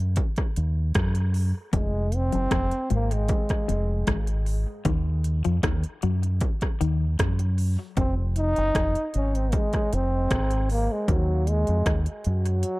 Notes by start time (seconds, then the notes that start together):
Already playing: F#2
0.16 kick, closed hi-hat
0.36 kick, cross-stick, closed hi-hat
0.56 D#2, closed hi-hat
0.95 F#2, kick, cross-stick, closed hi-hat
1.15 closed hi-hat
1.34 open hi-hat
1.73 F1 F2 G#3, kick, closed hi-hat
2.12 C4, closed hi-hat
2.32 F#1 F#2, closed hi-hat
2.51 F1 F2, kick, cross-stick, closed hi-hat
2.71 closed hi-hat
2.90 G#1 G#2 A#3, closed hi-hat
3.11 G#3, closed hi-hat
3.28 kick, closed hi-hat
3.49 kick, cross-stick, closed hi-hat
3.68 F1 F2, closed hi-hat
4.07 G#1 G#2, kick, cross-stick, closed hi-hat
4.27 closed hi-hat
4.46 open hi-hat
4.85 D#2 D#3, kick, closed hi-hat
5.24 closed hi-hat
5.44 F2 F3, closed hi-hat
5.63 D#2 D#3, kick, cross-stick, closed hi-hat
5.83 closed hi-hat
6.02 F#2 F#3, closed hi-hat
6.23 closed hi-hat
6.40 kick, closed hi-hat
6.61 kick, cross-stick, closed hi-hat
6.81 D#2 D#3, closed hi-hat
7.19 F#2 F#3, kick, cross-stick, closed hi-hat
7.39 closed hi-hat
7.58 open hi-hat
7.97 F1 F2 C4, kick, closed hi-hat
8.36 D#4, closed hi-hat
8.56 F#1, closed hi-hat
8.75 F1, kick, cross-stick, closed hi-hat
8.95 closed hi-hat
9.14 G#1 C#4, closed hi-hat
9.35 C4, closed hi-hat
9.52 G#3, kick, closed hi-hat
9.73 kick, cross-stick, closed hi-hat
9.93 F1 C4, closed hi-hat
10.31 G#1, kick, cross-stick, closed hi-hat
10.51 closed hi-hat
10.70 A#3, open hi-hat
10.92 G#3
11.08 D#2 F#3, kick, closed hi-hat
11.47 G#3, closed hi-hat
11.67 F2, closed hi-hat
11.86 D#2, kick, cross-stick, closed hi-hat
12.06 closed hi-hat
12.24 F#2 F#3, closed hi-hat
12.46 closed hi-hat
12.63 closed hi-hat